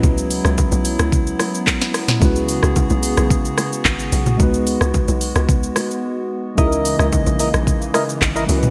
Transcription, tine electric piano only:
X:1
M:4/4
L:1/8
Q:1/4=110
K:C#dor
V:1 name="Tine electric piano"
[G,CEFB]6- [G,CEFB] z | [G,CEFB]8 | [G,B,DFB]8 | [G,CDEGA]6- [G,CDEGA] [G,CEFAB] |]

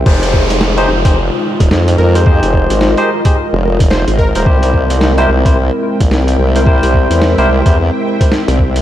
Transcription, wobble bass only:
X:1
M:4/4
L:1/16
Q:"Swing 16ths" 1/4=109
K:Fm
V:1 name="Wobble bass" clef=bass
F,,,6 F,,,3 z2 E,,, F,,2 F,,2- | F,, F,,,2 A,,,2 z4 F,,,4 A,,,2 E,,, | C,,6 C,,3 z2 B,,, C,,2 C,,2- | C,, C,,2 =E,,2 C,, C,, E,,2 z4 C,,3 |]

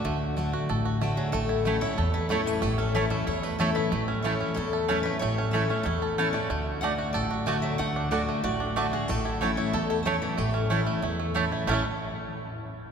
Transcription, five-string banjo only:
X:1
M:4/4
L:1/8
Q:1/4=186
K:A
V:1 name="Five-string banjo"
[A,D]2 A, F A F A, F, | A, E A, E A E A, E, | A, C E A, E A, A E | A, C A, C E A C A, |
A, C A, C E A C A, | A,2 A, F A F A, F, | A, D F A, F D A, F | A, E A, E A E A, E, |
A, C E A, E A, A E | [A,CEA] z6 z |]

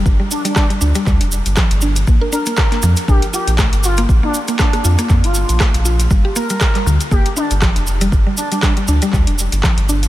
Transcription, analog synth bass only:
X:1
M:4/4
L:1/16
Q:"Swing 16ths" 1/4=119
K:Gm
V:1 name="Analog synth bass" clef=bass
G,,, z4 z D,, z D,, F,,,2 G,,, z G,,,3 | B,,, z4 z F,, z B,,, z2 B,,,2 G,,,3 | B,,, z4 z F,, z F,, G,,,2 B,,, z B,,,3 | G,,, z4 z D,, z G,,, z2 G,,,2 F,,,3 |
G,,, z4 z D,, z D,, F,,,2 G,,, z G,,,3 |]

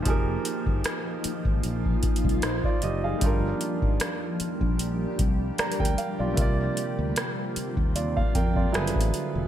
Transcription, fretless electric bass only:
X:1
M:4/4
L:1/16
Q:"Swing 16ths" 1/4=76
K:Fdor
V:1 name="Fretless electric bass" clef=bass
F,,,2 z G,,, z3 A,,, B,,,2 z C,, B,,, z _G,,,2 | G,,,2 z A,,, z3 B,,,3 C,,2 z D,, z =B,,, | C,,2 z D,, z3 E,,3 F,,2 _G,,, =A,,, z _F,,, |]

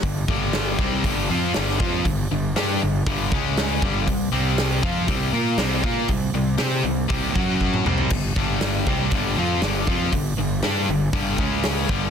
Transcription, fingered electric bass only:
X:1
M:4/4
L:1/8
Q:1/4=119
K:C
V:1 name="Fingered electric bass" clef=bass
G,,, G,,,2 C,, G,,, F,, G,,, F,, | G,,, G,,, G,, G,,, G,,, ^C,,2 G,,, | C,, C,,2 F,, C,, _B,, C,, B,, | C,, C,, C, C,, C,, ^F,,2 C,, |
G,,, G,,,2 C,, G,,, F,, G,,, F,, | G,,, G,,, G,, G,,, G,,, ^C,,2 G,,, |]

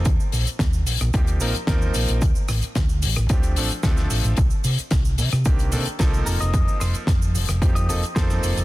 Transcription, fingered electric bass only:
X:1
M:4/4
L:1/16
Q:1/4=111
K:Cdor
V:1 name="Fingered electric bass" clef=bass
E,, z B,,, z E,,2 B,,, B,,, z2 B,,, z E,,2 B,,, B,,, | z2 A,,, z D,,2 A,,, A,,, D,,2 A,,, z D,,2 A,,, A,,, | z2 C, z C,,2 C, C, C,,2 C, z C,,2 F,,, F,,, | F,, z F,,, z F,,2 F,,, F,,, F,,2 F,,, z F,,2 F,,, F,,, |]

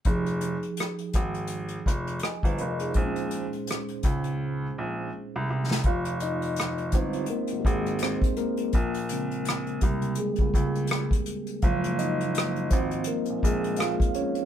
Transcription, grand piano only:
X:1
M:4/4
L:1/16
Q:"Swing 16ths" 1/4=83
K:Fm
V:1 name="Grand piano" clef=bass
F,,,3 z3 A,,,4 F,,,2 z G,,, F,,,2 | B,,,3 z3 D,,4 B,,,2 z C,, C,,2 | F,,,6 G,,,2 z A,,, A,,,3 z3 | B,,,6 C,,2 z D,, D,,3 z3 |
_G,,,6 A,,,2 z B,,, B,,,3 z3 |]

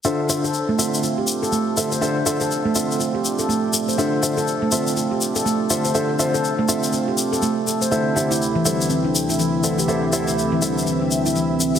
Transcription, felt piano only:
X:1
M:4/4
L:1/16
Q:"Swing 16ths" 1/4=122
K:Dm
V:1 name="Felt piano"
[D,FAce]2 [D,FAce] z3 [D,FAce]2 z6 [D,FAce] z | [D,FAce] z [D,FAce] z3 [D,FAce]2 z8 | [D,FAce]2 [D,FAce] z3 [D,FAce]2 z6 [D,FAce] z | [D,FAce] z [D,FAce] z3 [D,FAce]2 z8 |
[D,EAce]2 [D,EAce] z3 [D,EAce]2 z6 [D,EAce] z | [D,EAce] z [D,EAce] z3 [D,EAce]2 z8 |]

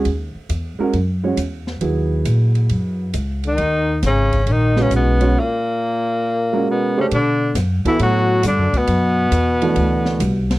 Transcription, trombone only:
X:1
M:4/4
L:1/16
Q:"Swing" 1/4=136
K:Ebphr
V:1 name="Trombone" clef=bass
z16 | z12 z2 E,2- | E,4 D,3- D,/2 D,/2 E,2 D,2 C,4 | B,,12 C,2 D,2 |
[K:Bphr] D,4 z2 E,2 F,4 D,2 B,,2- | B,,12- B,,2 z2 |]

